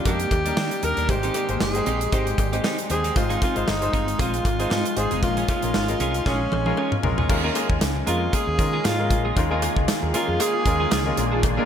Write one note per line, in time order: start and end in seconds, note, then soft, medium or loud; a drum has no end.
0.00 1.07 D#3 medium
0.00 1.11 D#3 medium
0.00 0.05 G3 medium
0.00 1.05 A#3 medium
0.00 0.05 D4 medium
0.00 0.06 D#4 medium
0.00 1.07 G4 medium
0.00 1.10 G4 medium
0.00 0.06 A#4 medium
0.00 1.07 D5 medium
0.05 0.25 F2 medium
0.05 0.36 G3 medium
0.05 0.21 A#3 medium
0.05 0.36 D4 medium
0.05 0.19 D4 medium
0.05 0.36 D#4 medium
0.05 0.18 G4 medium
0.05 0.86 G4 medium
0.05 0.37 A#4 medium
0.05 kick loud
0.05 closed hi-hat medium
0.05 cowbell medium
0.20 muted clean electric guitar stroke soft
0.20 closed hi-hat soft
0.31 0.51 D#2 medium
0.31 muted clean electric guitar stroke soft
0.31 kick medium
0.31 closed hi-hat medium
0.31 cowbell medium
0.45 0.75 G3 medium
0.45 0.56 A#3 medium
0.45 0.76 D4 medium
0.45 0.56 D4 medium
0.45 0.76 D#4 medium
0.45 0.55 G4 medium
0.45 0.76 A#4 medium
0.45 closed hi-hat medium
0.57 0.68 D#3 medium
0.57 0.72 A#3 medium
0.57 0.71 D4 medium
0.57 0.70 G4 medium
0.57 snare loud
0.57 cowbell medium
0.71 muted clean electric guitar stroke soft
0.71 closed hi-hat medium
0.82 0.94 D#2 medium
0.82 1.04 G3 medium
0.82 1.04 D4 medium
0.82 1.04 D#4 medium
0.82 1.04 A#4 medium
0.82 1.11 A#4 loud
0.82 muted clean electric guitar stroke soft
0.82 closed hi-hat medium
0.97 1.06 D#2 medium
0.97 1.08 A#3 soft
0.97 1.07 D4 medium
0.97 1.07 G4 medium
0.97 closed hi-hat soft
1.09 1.28 G#1 loud
1.09 1.83 G#2 medium
1.09 1.40 G#3 medium
1.09 7.26 G#3 medium
1.09 3.14 C4 medium
1.09 1.40 D#4 medium
1.09 1.61 G4 medium
1.09 1.40 G4 medium
1.09 1.40 C5 medium
1.09 3.14 G5 medium
1.09 muted clean electric guitar stroke soft
1.09 kick loud
1.09 closed hi-hat medium
1.09 cowbell medium
1.23 1.34 C4 medium
1.23 1.35 D#4 medium
1.23 1.35 G4 medium
1.23 closed hi-hat soft
1.34 1.47 C4 medium
1.34 1.47 D#4 medium
1.34 1.48 G4 medium
1.34 closed hi-hat medium
1.34 cowbell medium
1.49 1.58 G#1 medium
1.49 1.69 G#3 medium
1.49 1.69 D#4 medium
1.49 1.69 G4 medium
1.49 1.69 C5 medium
1.49 muted clean electric guitar stroke soft
1.49 closed hi-hat soft
1.60 1.80 G1 medium
1.60 2.15 G#4 medium
1.60 muted clean electric guitar stroke soft
1.60 snare loud
1.60 cowbell medium
1.75 2.05 G#3 medium
1.75 2.05 D#4 medium
1.75 2.05 C5 medium
1.75 2.05 G5 medium
1.75 muted clean electric guitar stroke soft
1.75 closed hi-hat soft
1.86 2.06 A#1 medium
1.86 2.02 C4 medium
1.86 2.01 D#4 medium
1.86 2.00 G4 medium
1.86 closed hi-hat medium
2.01 muted clean electric guitar stroke soft
2.01 closed hi-hat soft
2.12 2.32 G#1 medium
2.12 2.43 G#3 medium
2.12 2.28 C4 medium
2.12 2.43 D#4 medium
2.12 2.27 D#4 medium
2.12 2.43 G4 medium
2.12 2.26 G4 medium
2.12 2.64 G4 medium
2.12 2.44 C5 medium
2.12 kick medium
2.12 closed hi-hat medium
2.12 cowbell medium
2.27 muted clean electric guitar stroke soft
2.27 closed hi-hat soft
2.38 2.58 G#1 medium
2.38 muted clean electric guitar stroke soft
2.38 kick medium
2.38 closed hi-hat medium
2.38 cowbell medium
2.52 2.82 G#3 medium
2.52 2.63 C4 medium
2.52 2.82 D#4 medium
2.52 2.63 D#4 medium
2.52 2.62 G4 medium
2.52 2.83 G4 medium
2.52 2.83 C5 medium
2.52 closed hi-hat soft
2.64 2.79 C4 medium
2.64 2.78 D#4 medium
2.64 2.77 G4 medium
2.64 snare loud
2.64 cowbell medium
2.78 muted clean electric guitar stroke soft
2.78 closed hi-hat medium
2.90 3.10 D#2 medium
2.90 3.11 G#3 medium
2.90 3.11 D#4 medium
2.90 3.11 G4 medium
2.90 3.18 G#4 loud
2.90 3.11 C5 medium
2.90 muted clean electric guitar stroke soft
2.90 closed hi-hat medium
3.04 3.15 C4 soft
3.04 3.14 D#4 medium
3.04 3.14 G4 medium
3.04 closed hi-hat soft
3.15 3.35 G#1 loud
3.15 3.90 G#2 medium
3.15 3.46 G#3 medium
3.15 3.47 D#4 medium
3.15 5.21 D#4 medium
3.15 5.21 F4 medium
3.15 3.47 F4 medium
3.15 3.42 F4 loud
3.15 3.47 C5 medium
3.15 muted clean electric guitar stroke soft
3.15 kick loud
3.15 closed hi-hat medium
3.15 cowbell medium
3.29 3.40 C4 medium
3.29 3.41 D#4 medium
3.29 3.41 G#4 medium
3.29 closed hi-hat soft
3.41 3.53 C4 medium
3.41 3.54 D#4 medium
3.41 3.70 F4 medium
3.41 3.54 G#4 medium
3.41 kick medium
3.41 closed hi-hat medium
3.41 cowbell medium
3.55 3.65 G#1 medium
3.55 3.75 G#3 medium
3.55 3.75 D#4 medium
3.55 3.76 F4 medium
3.55 3.76 C5 medium
3.55 muted clean electric guitar stroke soft
3.55 closed hi-hat soft
3.67 3.87 G1 medium
3.67 4.22 D#4 medium
3.67 muted clean electric guitar stroke soft
3.67 snare medium
3.67 cowbell medium
3.81 4.11 G#3 medium
3.81 4.12 D#4 medium
3.81 4.12 F4 medium
3.81 4.12 C5 medium
3.81 muted clean electric guitar stroke medium
3.81 closed hi-hat soft
3.93 4.13 G1 medium
3.93 4.08 C4 medium
3.93 4.07 D#4 loud
3.93 4.06 G#4 loud
3.93 kick medium
3.93 closed hi-hat medium
4.08 muted clean electric guitar stroke soft
4.08 closed hi-hat soft
4.19 4.39 A#1 medium
4.19 4.50 G#3 medium
4.19 4.34 C4 medium
4.19 4.50 D#4 medium
4.19 4.33 D#4 medium
4.19 4.50 F4 medium
4.19 4.99 F4 loud
4.19 4.32 G#4 loud
4.19 4.50 C5 medium
4.19 kick medium
4.19 closed hi-hat medium
4.19 cowbell medium
4.33 muted clean electric guitar stroke soft
4.33 closed hi-hat soft
4.45 4.65 G#1 medium
4.45 muted clean electric guitar stroke soft
4.45 kick medium
4.45 closed hi-hat medium
4.45 cowbell medium
4.59 4.89 G#3 medium
4.59 4.69 C4 medium
4.59 4.89 D#4 medium
4.59 4.70 D#4 medium
4.59 4.89 F4 medium
4.59 4.69 G#4 medium
4.59 4.90 C5 medium
4.59 closed hi-hat soft
4.70 4.82 G#2 medium
4.70 4.86 C4 medium
4.70 4.85 D#4 medium
4.70 4.84 G#4 medium
4.70 snare loud
4.70 cowbell medium
4.85 muted clean electric guitar stroke soft
4.85 closed hi-hat medium
4.96 5.08 G#1 medium
4.96 5.17 G#3 medium
4.96 5.18 D#4 medium
4.96 5.18 F4 medium
4.96 5.22 G#4 medium
4.96 5.18 C5 medium
4.96 muted clean electric guitar stroke soft
4.96 closed hi-hat medium
5.11 5.20 F1 medium
5.11 5.22 C4 soft
5.11 5.21 D#4 medium
5.11 5.21 G#4 medium
5.11 closed hi-hat soft
5.23 5.42 A#1 loud
5.23 5.97 A#2 medium
5.23 5.53 G#3 medium
5.23 7.28 A#3 medium
5.23 7.28 C#4 medium
5.23 5.54 C#4 medium
5.23 5.47 F4 medium
5.23 5.54 F4 medium
5.23 5.54 A#4 medium
5.23 muted clean electric guitar stroke soft
5.23 kick loud
5.23 closed hi-hat medium
5.23 cowbell medium
5.37 5.47 C#4 medium
5.37 5.48 F4 medium
5.37 5.48 G#4 medium
5.37 closed hi-hat soft
5.48 5.61 C#4 medium
5.48 6.28 F4 medium
5.48 5.61 F4 medium
5.48 5.61 G#4 medium
5.48 kick medium
5.48 closed hi-hat medium
5.48 cowbell medium
5.62 5.72 A#1 medium
5.62 5.82 G#3 medium
5.62 5.83 C#4 medium
5.62 5.83 F4 medium
5.62 5.83 A#4 medium
5.62 muted clean electric guitar stroke medium
5.62 closed hi-hat soft
5.74 5.94 G#1 medium
5.74 muted clean electric guitar stroke soft
5.74 snare medium
5.74 cowbell medium
5.88 6.18 G#3 medium
5.88 6.19 C#4 medium
5.88 6.19 F4 medium
5.88 6.19 A#4 medium
5.88 muted clean electric guitar stroke soft
5.88 closed hi-hat soft
6.00 6.19 C2 medium
6.00 6.15 C#4 medium
6.00 6.14 F4 medium
6.00 6.13 G#4 medium
6.00 closed hi-hat medium
6.14 muted clean electric guitar stroke soft
6.14 closed hi-hat soft
6.25 6.46 A#1 medium
6.25 6.57 G#3 medium
6.25 6.57 C#4 medium
6.25 6.41 C#4 medium
6.25 7.04 C#4 medium
6.25 6.57 F4 medium
6.25 6.40 F4 medium
6.25 6.57 G#4 medium
6.25 6.39 G#4 medium
6.25 kick medium
6.25 snare medium
6.25 cowbell medium
6.40 muted clean electric guitar stroke soft
6.52 6.72 A#1 medium
6.52 muted clean electric guitar stroke soft
6.52 high tom medium
6.52 cowbell medium
6.66 6.96 G#3 medium
6.66 6.96 C#4 medium
6.66 6.77 C#4 soft
6.66 6.76 F4 medium
6.66 6.96 F4 medium
6.66 6.76 G#4 medium
6.66 6.97 A#4 medium
6.66 high tom medium
6.77 6.93 C#4 medium
6.77 6.92 F4 medium
6.77 6.91 G#4 medium
6.77 cowbell medium
6.92 muted clean electric guitar stroke soft
6.92 mid tom medium
7.03 7.23 A#1 medium
7.03 7.24 G#3 medium
7.03 7.24 C#4 medium
7.03 7.25 F4 medium
7.03 7.25 A#4 medium
7.03 muted clean electric guitar stroke soft
7.03 floor tom loud
7.18 7.28 C#4 medium
7.18 7.28 F4 medium
7.18 7.28 G#4 medium
7.18 floor tom medium
7.29 7.49 D#2 loud
7.29 8.03 D#3 medium
7.29 11.14 D#3 medium
7.29 7.40 G#3 medium
7.29 11.65 A#3 medium
7.29 7.41 C#4 medium
7.29 11.14 F4 medium
7.29 7.41 F4 medium
7.29 11.14 G#4 medium
7.29 7.41 A#4 medium
7.29 muted clean electric guitar stroke soft
7.29 kick loud
7.29 crash medium
7.29 cowbell medium
7.43 7.94 G#3 medium
7.43 7.54 A#3 medium
7.43 7.94 C#4 medium
7.43 7.94 F4 medium
7.43 7.54 F4 medium
7.43 7.55 G#4 medium
7.43 7.94 A#4 medium
7.55 7.67 A#3 medium
7.55 7.68 F4 medium
7.55 7.68 G#4 medium
7.55 closed hi-hat medium
7.55 cowbell medium
7.70 7.78 D#2 medium
7.70 muted clean electric guitar stroke soft
7.70 kick medium
7.81 8.01 C#2 medium
7.81 muted clean electric guitar stroke soft
7.81 snare loud
7.81 closed hi-hat medium
7.81 cowbell medium
7.96 muted clean electric guitar stroke soft
8.06 8.27 F2 medium
8.06 8.48 G#3 medium
8.06 8.22 A#3 medium
8.06 8.49 C#4 medium
8.06 8.49 F4 medium
8.06 8.21 F4 medium
8.06 8.36 F4 medium
8.06 8.20 G#4 loud
8.06 8.49 A#4 medium
8.06 closed hi-hat medium
8.21 muted clean electric guitar stroke soft
8.33 8.48 A#3 medium
8.33 8.47 F4 medium
8.33 8.46 G#4 medium
8.33 8.88 G#4 loud
8.33 kick medium
8.33 closed hi-hat medium
8.33 cowbell medium
8.47 8.56 D#2 medium
8.47 muted clean electric guitar stroke soft
8.58 8.78 D#3 loud
8.58 8.89 G#3 medium
8.58 8.90 C#4 medium
8.58 8.90 F4 medium
8.58 8.90 A#4 medium
8.58 muted clean electric guitar stroke soft
8.58 kick medium
8.58 closed hi-hat medium
8.73 8.83 A#3 medium
8.73 8.83 F4 medium
8.73 8.83 G#4 medium
8.84 9.12 G#2 medium
8.84 9.00 A#3 medium
8.84 8.99 F4 medium
8.84 9.26 F4 medium
8.84 8.98 G#4 medium
8.84 snare loud
8.84 closed hi-hat medium
8.84 cowbell medium
8.98 9.29 G#3 medium
8.98 9.29 C#4 medium
8.98 9.29 F4 medium
8.98 9.29 A#4 medium
8.98 muted clean electric guitar stroke soft
9.11 9.30 A#1 medium
9.11 muted clean electric guitar stroke soft
9.11 kick medium
9.11 closed hi-hat medium
9.25 9.35 A#3 soft
9.25 9.35 F4 medium
9.25 9.35 G#4 medium
9.36 9.67 D#2 loud
9.36 10.10 D#3 medium
9.36 9.47 G#3 medium
9.36 9.48 C#4 medium
9.36 9.48 F4 medium
9.36 9.48 A#4 medium
9.36 muted clean electric guitar stroke soft
9.36 kick loud
9.36 closed hi-hat medium
9.36 cowbell medium
9.50 10.01 G#3 medium
9.50 9.61 A#3 medium
9.50 10.01 C#4 medium
9.50 10.01 F4 medium
9.50 9.62 F4 medium
9.50 9.63 G#4 medium
9.50 10.01 A#4 loud
9.62 9.75 A#3 medium
9.62 9.75 F4 medium
9.62 9.75 G#4 medium
9.62 closed hi-hat medium
9.62 cowbell medium
9.76 9.85 C#2 medium
9.76 muted clean electric guitar stroke soft
9.76 kick medium
9.88 muted clean electric guitar stroke soft
9.88 snare medium
9.88 closed hi-hat medium
9.88 cowbell medium
10.03 10.11 D#2 medium
10.03 muted clean electric guitar stroke soft
10.13 10.55 G#3 medium
10.13 10.29 A#3 medium
10.13 10.56 C#4 medium
10.13 10.56 F4 medium
10.13 10.43 F4 medium
10.13 10.28 F4 medium
10.13 10.27 G#4 medium
10.13 10.56 A#4 medium
10.13 closed hi-hat medium
10.28 10.37 F2 medium
10.28 muted clean electric guitar stroke soft
10.40 10.55 A#3 medium
10.40 10.54 F4 medium
10.40 10.92 G#4 loud
10.40 10.53 G#4 medium
10.40 closed hi-hat medium
10.40 cowbell medium
10.54 muted clean electric guitar stroke soft
10.65 10.85 D#2 medium
10.65 10.96 G#3 medium
10.65 10.97 C#4 medium
10.65 10.97 F4 medium
10.65 10.97 A#4 medium
10.65 muted clean electric guitar stroke soft
10.65 kick medium
10.65 closed hi-hat medium
10.80 10.90 A#3 medium
10.80 10.90 F4 medium
10.80 10.90 G#4 medium
10.91 11.11 C#2 medium
10.91 11.07 A#3 medium
10.91 11.05 F4 medium
10.91 11.30 G#4 medium
10.91 11.05 G#4 loud
10.91 snare loud
10.91 closed hi-hat medium
10.91 cowbell medium
11.06 11.15 G#3 medium
11.06 11.18 C#4 medium
11.06 11.16 F4 medium
11.06 11.17 A#4 medium
11.06 muted clean electric guitar stroke soft
11.17 11.56 A#1 loud
11.17 11.65 A#2 medium
11.17 11.49 G#3 medium
11.17 11.49 D4 medium
11.17 11.49 F4 medium
11.17 11.49 A#4 medium
11.17 muted clean electric guitar stroke soft
11.17 closed hi-hat medium
11.32 11.42 A#3 medium
11.32 11.42 D4 medium
11.32 11.42 G#4 medium
11.43 muted clean electric guitar stroke soft
11.43 kick loud
11.43 closed hi-hat medium
11.43 cowbell medium
11.57 11.65 G#3 medium
11.57 11.65 A#3 medium
11.57 11.65 D4 medium
11.57 11.65 F4 medium
11.57 11.65 G#4 medium
11.57 11.65 A#4 loud